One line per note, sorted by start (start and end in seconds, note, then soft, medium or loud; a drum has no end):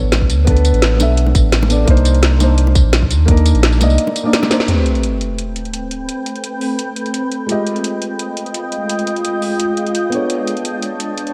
0.00 0.31 A1 medium
0.00 0.45 B3 loud
0.00 0.46 D4 medium
0.00 0.48 A4 medium
0.00 1.89 C#5 loud
0.12 snare loud
0.12 closed hi-hat medium
0.12 high bongo soft
0.22 kick medium
0.30 0.73 D2 medium
0.30 closed hi-hat medium
0.30 tambourine medium
0.45 0.96 B3 medium
0.45 0.97 D4 medium
0.45 0.98 A4 medium
0.45 kick loud
0.45 closed hi-hat medium
0.50 0.99 B4 loud
0.57 closed hi-hat soft
0.65 closed hi-hat medium
0.65 tambourine medium
0.74 1.01 A1 loud
0.74 closed hi-hat soft
0.82 snare loud
0.82 closed hi-hat medium
0.97 1.34 B1 medium
0.97 1.67 B3 medium
0.97 1.68 D4 medium
0.97 1.69 A4 medium
0.97 closed hi-hat medium
0.97 tambourine medium
0.97 high bongo medium
1.02 1.69 E5 medium
1.17 closed hi-hat medium
1.26 high bongo medium
1.35 1.86 A1 medium
1.35 kick loud
1.35 closed hi-hat medium
1.35 tambourine medium
1.52 snare loud
1.52 closed hi-hat medium
1.63 high bongo medium
1.69 1.85 B3 medium
1.69 1.85 D4 medium
1.69 1.86 A4 medium
1.69 1.86 D5 medium
1.69 closed hi-hat medium
1.69 tambourine medium
1.85 2.83 C2 loud
1.85 2.36 A#3 loud
1.85 2.38 D4 medium
1.85 2.39 D#4 medium
1.85 kick loud
1.85 closed hi-hat medium
1.90 2.40 C5 loud
1.97 closed hi-hat soft
2.05 closed hi-hat medium
2.05 tambourine medium
2.15 closed hi-hat soft
2.23 snare loud
2.23 closed hi-hat medium
2.38 3.24 A#3 medium
2.38 3.26 D4 medium
2.38 3.27 D#4 medium
2.38 closed hi-hat medium
2.38 tambourine medium
2.38 high bongo medium
2.43 3.27 C5 medium
2.58 closed hi-hat medium
2.67 high bongo medium
2.75 kick loud
2.75 closed hi-hat medium
2.75 tambourine medium
2.85 3.12 A#1 medium
2.93 snare loud
2.93 closed hi-hat medium
2.93 high bongo soft
3.02 kick medium
3.10 3.53 D#2 medium
3.10 closed hi-hat medium
3.10 tambourine medium
3.25 3.76 A#3 medium
3.25 3.78 D4 medium
3.25 3.79 D#4 medium
3.25 kick loud
3.25 closed hi-hat loud
3.31 3.80 A#4 loud
3.37 closed hi-hat soft
3.46 closed hi-hat medium
3.46 tambourine medium
3.55 3.82 A#1 loud
3.55 closed hi-hat soft
3.63 snare loud
3.63 closed hi-hat loud
3.72 tambourine soft
3.78 3.98 C2 medium
3.78 4.22 A#3 medium
3.78 4.24 D#4 medium
3.78 4.23 D5 medium
3.78 closed hi-hat medium
3.78 tambourine medium
3.78 high bongo medium
3.83 4.24 D#5 medium
3.90 tambourine soft
3.98 closed hi-hat loud
4.07 high bongo soft
4.16 closed hi-hat medium
4.16 tambourine medium
4.24 4.48 A#3 medium
4.24 4.49 D4 medium
4.24 4.49 D#4 medium
4.24 4.49 D5 medium
4.33 snare loud
4.33 closed hi-hat loud
4.43 snare soft
4.43 high bongo medium
4.49 4.66 A#3 medium
4.49 4.66 D4 medium
4.49 4.67 D#4 medium
4.49 4.67 C5 medium
4.49 snare medium
4.49 closed hi-hat medium
4.49 tambourine medium
4.60 snare medium
4.66 7.46 A3 medium
4.66 7.47 C4 medium
4.66 7.46 C4 medium
4.66 7.47 G4 medium
4.66 7.46 B4 medium
4.66 7.46 G5 medium
4.66 closed hi-hat medium
4.66 sub drop medium
4.71 7.48 B4 medium
4.86 closed hi-hat medium
4.95 closed hi-hat soft
5.03 closed hi-hat medium
5.21 closed hi-hat medium
5.38 closed hi-hat medium
5.56 closed hi-hat medium
5.65 closed hi-hat soft
5.74 closed hi-hat medium
5.91 closed hi-hat medium
6.09 closed hi-hat medium
6.26 closed hi-hat medium
6.36 closed hi-hat soft
6.44 closed hi-hat medium
6.61 open hi-hat medium
6.79 closed hi-hat medium
6.96 closed hi-hat medium
7.06 closed hi-hat soft
7.14 closed hi-hat medium
7.32 closed hi-hat medium
7.46 10.09 G#3 medium
7.46 10.10 G#3 medium
7.46 10.10 F4 medium
7.46 10.11 G4 medium
7.46 10.10 D#5 medium
7.46 10.09 G5 medium
7.46 closed hi-hat medium
7.51 10.11 D#5 medium
7.67 closed hi-hat medium
7.76 closed hi-hat soft
7.84 closed hi-hat medium
8.02 closed hi-hat medium
8.19 closed hi-hat medium
8.37 closed hi-hat medium
8.46 closed hi-hat soft
8.54 closed hi-hat medium
8.72 closed hi-hat medium
8.89 closed hi-hat medium
8.99 closed hi-hat soft
9.07 closed hi-hat medium
9.16 closed hi-hat soft
9.25 closed hi-hat medium
9.42 open hi-hat medium
9.60 closed hi-hat medium
9.77 closed hi-hat medium
9.87 closed hi-hat soft
9.95 closed hi-hat medium
10.10 11.33 B3 medium
10.10 11.33 D4 medium
10.10 11.33 A4 medium
10.10 11.33 C#5 medium
10.10 11.33 A5 medium
10.10 closed hi-hat medium
10.15 11.33 C#5 medium
10.30 closed hi-hat medium
10.47 closed hi-hat medium
10.57 closed hi-hat soft
10.65 closed hi-hat medium
10.82 closed hi-hat medium
11.00 closed hi-hat medium
11.18 closed hi-hat medium
11.27 closed hi-hat soft